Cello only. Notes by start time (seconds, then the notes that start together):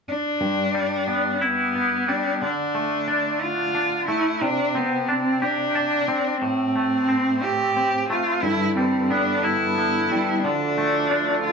0.08 D4
1.43 B3
2.09 D4
2.42 D4
3.42 F4
4.08 E4
4.43 D4
4.77 B3
5.10 C4
5.43 D4
6.43 C4
7.44 G4
8.10 F4
8.43 E4
8.77 C4
9.10 D4
9.45 E4
10.44 D4
11.44 F4